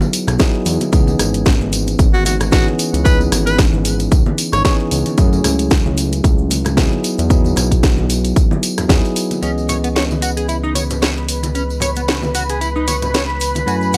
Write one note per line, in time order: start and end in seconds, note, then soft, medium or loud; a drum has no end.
0.00 0.36 F#3 medium
0.00 0.37 B3 medium
0.00 0.37 D#4 medium
0.00 0.37 E4 medium
0.00 0.37 G#4 medium
0.00 tambourine soft
0.00 high conga loud
0.00 cabasa soft
0.13 open hi-hat loud
0.13 tambourine medium
0.13 cabasa medium
0.27 0.38 B1 medium
0.27 cross-stick medium
0.27 closed hi-hat medium
0.27 tambourine soft
0.27 low conga medium
0.27 cabasa soft
0.39 0.90 F#3 medium
0.39 0.90 B3 medium
0.39 0.90 D#4 medium
0.39 0.90 E4 medium
0.39 0.90 G#4 medium
0.39 kick loud
0.39 snare loud
0.39 closed hi-hat soft
0.39 tambourine soft
0.39 cabasa soft
0.53 cabasa soft
0.65 0.79 E2 medium
0.65 open hi-hat loud
0.65 tambourine medium
0.65 cabasa medium
0.80 closed hi-hat medium
0.80 tambourine soft
0.80 high conga medium
0.80 cabasa soft
0.92 1.16 C#2 loud
0.92 2.49 E3 medium
0.92 2.49 B3 medium
0.92 2.49 C#4 medium
0.92 2.50 D#4 medium
0.92 2.50 G#4 medium
0.92 kick loud
0.92 closed hi-hat soft
0.92 tambourine soft
0.92 cabasa medium
1.07 tambourine soft
1.07 high conga medium
1.07 cabasa soft
1.19 1.57 G#1 medium
1.19 cross-stick medium
1.19 open hi-hat loud
1.19 tambourine medium
1.19 low conga medium
1.19 cabasa medium
1.34 closed hi-hat medium
1.34 tambourine soft
1.34 cabasa soft
1.45 kick loud
1.45 snare loud
1.45 closed hi-hat soft
1.45 tambourine soft
1.45 cabasa soft
1.61 1.96 G#1 medium
1.61 high conga medium
1.61 cabasa soft
1.72 open hi-hat medium
1.72 tambourine medium
1.72 cabasa medium
1.87 closed hi-hat medium
1.87 tambourine soft
1.87 cabasa soft
1.99 2.63 G#1 medium
1.99 kick loud
1.99 closed hi-hat medium
1.99 tambourine soft
1.99 cabasa soft
2.14 2.21 F#4 medium
2.14 cabasa soft
2.25 2.35 F#4 medium
2.25 open hi-hat loud
2.25 tambourine medium
2.25 high conga medium
2.25 cabasa medium
2.40 cross-stick medium
2.40 closed hi-hat medium
2.40 tambourine soft
2.40 low conga medium
2.40 cabasa soft
2.51 3.02 E3 medium
2.51 3.03 B3 medium
2.51 3.03 C#4 medium
2.51 3.03 D#4 medium
2.51 2.66 F#4 medium
2.51 3.03 G#4 medium
2.51 kick loud
2.51 snare loud
2.51 closed hi-hat soft
2.51 tambourine soft
2.51 cabasa soft
2.67 high conga medium
2.67 cabasa soft
2.79 open hi-hat medium
2.79 tambourine medium
2.79 cabasa medium
2.93 3.29 C#2 medium
2.93 closed hi-hat medium
2.93 tambourine soft
2.93 cabasa soft
3.04 4.61 E3 medium
3.04 4.62 B3 medium
3.04 4.62 C#4 medium
3.04 4.62 D#4 medium
3.04 4.62 G#4 medium
3.04 3.19 B4 medium
3.04 kick loud
3.04 closed hi-hat medium
3.04 tambourine soft
3.04 cabasa medium
3.19 tambourine soft
3.19 high conga medium
3.19 cabasa soft
3.32 3.70 G#1 medium
3.32 cross-stick medium
3.32 open hi-hat loud
3.32 tambourine medium
3.32 low conga medium
3.32 cabasa medium
3.46 3.58 B4 medium
3.46 closed hi-hat medium
3.46 tambourine soft
3.46 cabasa soft
3.58 kick loud
3.58 snare loud
3.58 closed hi-hat soft
3.58 tambourine soft
3.58 cabasa medium
3.73 4.09 G#1 medium
3.73 high conga medium
3.73 cabasa soft
3.85 open hi-hat medium
3.85 tambourine medium
3.85 cabasa medium
4.00 closed hi-hat medium
4.00 tambourine soft
4.00 cabasa soft
4.11 4.24 C#2 medium
4.11 kick loud
4.11 closed hi-hat medium
4.11 tambourine soft
4.11 cabasa soft
4.26 high conga medium
4.26 cabasa soft
4.38 open hi-hat loud
4.38 tambourine medium
4.38 cabasa medium
4.52 4.63 G#1 medium
4.52 4.61 C#5 medium
4.52 cross-stick medium
4.52 closed hi-hat medium
4.52 tambourine soft
4.52 low conga medium
4.52 cabasa soft
4.64 5.15 E3 medium
4.64 5.15 B3 medium
4.64 5.15 C#4 medium
4.64 5.15 D#4 medium
4.64 5.15 G#4 medium
4.64 4.74 C#5 medium
4.64 kick loud
4.64 snare loud
4.64 closed hi-hat soft
4.64 tambourine soft
4.64 cabasa soft
4.79 cabasa soft
4.91 5.04 C#2 medium
4.91 open hi-hat medium
4.91 tambourine medium
4.91 cabasa medium
5.06 closed hi-hat medium
5.06 tambourine soft
5.06 high conga medium
5.06 cabasa soft
5.17 5.41 F#2 loud
5.17 6.74 F#3 medium
5.17 6.74 A3 medium
5.17 6.75 C#4 medium
5.17 6.75 E4 medium
5.17 6.75 G#4 medium
5.17 kick loud
5.17 closed hi-hat medium
5.17 tambourine soft
5.17 cabasa medium
5.33 tambourine soft
5.33 high conga medium
5.33 cabasa soft
5.44 5.82 C#2 medium
5.44 cross-stick medium
5.44 open hi-hat loud
5.44 tambourine medium
5.44 low conga medium
5.44 cabasa medium
5.59 closed hi-hat medium
5.59 tambourine soft
5.59 cabasa soft
5.70 kick loud
5.70 snare loud
5.70 closed hi-hat medium
5.70 tambourine soft
5.70 cabasa medium
5.86 6.21 C#2 medium
5.86 high conga medium
5.86 cabasa soft
5.97 open hi-hat medium
5.97 tambourine medium
5.97 cabasa medium
6.12 closed hi-hat medium
6.12 tambourine soft
6.12 cabasa soft
6.24 6.88 C#2 medium
6.24 kick loud
6.24 closed hi-hat medium
6.24 tambourine soft
6.24 cabasa soft
6.38 cabasa soft
6.50 open hi-hat loud
6.50 tambourine medium
6.50 high conga medium
6.50 cabasa loud
6.65 cross-stick medium
6.65 closed hi-hat medium
6.65 tambourine soft
6.65 low conga medium
6.65 cabasa soft
6.77 7.27 F#3 medium
6.77 7.27 B3 medium
6.77 7.28 D#4 medium
6.77 7.28 E4 medium
6.77 7.28 G#4 medium
6.77 kick loud
6.77 snare loud
6.77 closed hi-hat medium
6.77 tambourine soft
6.77 cabasa medium
6.91 high conga medium
6.91 cabasa soft
7.04 open hi-hat medium
7.04 tambourine medium
7.04 cabasa loud
7.18 7.54 E2 medium
7.18 closed hi-hat medium
7.18 tambourine soft
7.18 cabasa soft
7.29 8.86 F#3 medium
7.29 8.87 B3 medium
7.29 8.87 D#4 medium
7.29 8.87 E4 medium
7.29 8.87 G#4 medium
7.29 kick loud
7.29 closed hi-hat medium
7.29 tambourine soft
7.29 cabasa medium
7.44 tambourine soft
7.44 high conga medium
7.44 cabasa soft
7.56 7.95 B1 medium
7.56 cross-stick medium
7.56 open hi-hat loud
7.56 tambourine medium
7.56 low conga medium
7.56 cabasa medium
7.71 kick medium
7.71 closed hi-hat medium
7.71 tambourine soft
7.71 cabasa soft
7.83 kick loud
7.83 snare loud
7.83 closed hi-hat medium
7.83 tambourine soft
7.83 cabasa medium
7.97 8.33 B1 medium
7.97 high conga medium
7.97 cabasa soft
8.10 open hi-hat medium
8.10 tambourine medium
8.10 cabasa loud
8.25 closed hi-hat medium
8.25 tambourine soft
8.25 cabasa soft
8.36 kick loud
8.36 closed hi-hat medium
8.36 tambourine soft
8.36 cabasa soft
8.51 high conga medium
8.51 cabasa soft
8.63 open hi-hat loud
8.63 tambourine medium
8.63 cabasa loud
8.78 8.87 E2 soft
8.78 cross-stick medium
8.78 closed hi-hat medium
8.78 tambourine soft
8.78 low conga medium
8.78 cabasa soft
8.89 9.02 E2 medium
8.89 9.39 F#3 medium
8.89 9.39 B3 medium
8.89 9.40 D#4 medium
8.89 9.40 E4 medium
8.89 9.40 G#4 medium
8.89 kick loud
8.89 snare loud
8.89 closed hi-hat medium
8.89 tambourine soft
8.89 cabasa medium
9.05 tambourine soft
9.05 cabasa soft
9.16 open hi-hat medium
9.16 tambourine medium
9.16 cabasa medium
9.31 closed hi-hat medium
9.31 tambourine soft
9.31 high conga medium
9.31 cabasa soft
9.41 13.65 C#2 medium
9.41 13.64 E3 medium
9.41 13.64 B3 medium
9.41 13.64 C#4 medium
9.41 9.50 C#4 medium
9.41 13.65 G#4 medium
9.41 13.97 B4 medium
9.41 13.65 D#5 medium
9.41 13.97 B5 medium
9.41 closed hi-hat soft
9.41 tambourine soft
9.41 cabasa soft
9.58 tambourine soft
9.58 cabasa soft
9.69 9.76 C#5 medium
9.69 open hi-hat medium
9.69 tambourine medium
9.69 low conga medium
9.69 cabasa medium
9.84 9.88 B3 medium
9.84 closed hi-hat medium
9.84 tambourine soft
9.84 cabasa soft
9.96 10.03 C#5 medium
9.96 snare loud
9.96 closed hi-hat soft
9.96 tambourine soft
9.96 cabasa soft
10.10 tambourine soft
10.10 high conga medium
10.10 cabasa soft
10.22 10.30 F#4 medium
10.22 open hi-hat medium
10.22 tambourine medium
10.22 cabasa medium
10.37 10.46 G#4 medium
10.37 closed hi-hat medium
10.37 tambourine soft
10.37 cabasa soft
10.48 10.56 E4 medium
10.48 closed hi-hat medium
10.48 tambourine soft
10.48 cabasa soft
10.64 10.72 D#4 medium
10.64 cabasa soft
10.75 10.83 C#5 medium
10.75 open hi-hat medium
10.75 tambourine medium
10.75 high conga medium
10.75 cabasa medium
10.90 closed hi-hat medium
10.90 tambourine soft
10.90 low conga medium
10.90 cabasa soft
11.02 11.09 C#5 medium
11.02 snare loud
11.02 closed hi-hat soft
11.02 tambourine soft
11.02 cabasa soft
11.17 cabasa soft
11.29 open hi-hat medium
11.29 tambourine medium
11.29 cabasa medium
11.43 closed hi-hat medium
11.43 tambourine soft
11.43 high conga medium
11.43 cabasa soft
11.55 11.62 C#4 medium
11.55 closed hi-hat soft
11.55 tambourine soft
11.55 cabasa soft
11.69 tambourine soft
11.69 cabasa soft
11.80 11.89 C#5 medium
11.80 open hi-hat loud
11.80 tambourine medium
11.80 low conga medium
11.80 cabasa medium
11.95 12.00 B3 medium
11.95 closed hi-hat medium
11.95 tambourine soft
11.95 cabasa soft
12.08 12.16 C#5 medium
12.08 snare loud
12.08 closed hi-hat soft
12.08 tambourine soft
12.08 cabasa soft
12.22 tambourine soft
12.22 high conga medium
12.22 cabasa soft
12.35 12.42 F#4 medium
12.35 open hi-hat medium
12.35 tambourine medium
12.35 cabasa medium
12.49 12.58 G#4 medium
12.49 closed hi-hat medium
12.49 tambourine soft
12.49 cabasa soft
12.61 12.69 E4 medium
12.61 closed hi-hat medium
12.61 tambourine soft
12.61 cabasa soft
12.76 12.85 D#4 medium
12.76 cabasa soft
12.87 12.95 C#5 medium
12.87 open hi-hat loud
12.87 tambourine medium
12.87 high conga medium
12.87 cabasa medium
13.02 closed hi-hat medium
13.02 tambourine soft
13.02 low conga medium
13.02 cabasa soft
13.14 13.22 C#5 medium
13.14 snare loud
13.14 closed hi-hat soft
13.14 tambourine soft
13.14 cabasa soft
13.29 cabasa soft
13.40 open hi-hat medium
13.40 tambourine medium
13.40 cabasa medium
13.55 closed hi-hat medium
13.55 tambourine soft
13.55 high conga medium
13.55 cabasa soft
13.66 13.97 F#2 medium
13.66 13.97 F#3 medium
13.66 13.97 A3 medium
13.66 13.97 C#4 medium
13.66 13.97 E4 medium
13.66 13.75 F#4 medium
13.66 13.97 G#5 medium
13.66 closed hi-hat soft
13.66 tambourine soft
13.66 cabasa soft
13.81 tambourine soft
13.81 cabasa soft
13.93 low conga medium
13.93 cabasa medium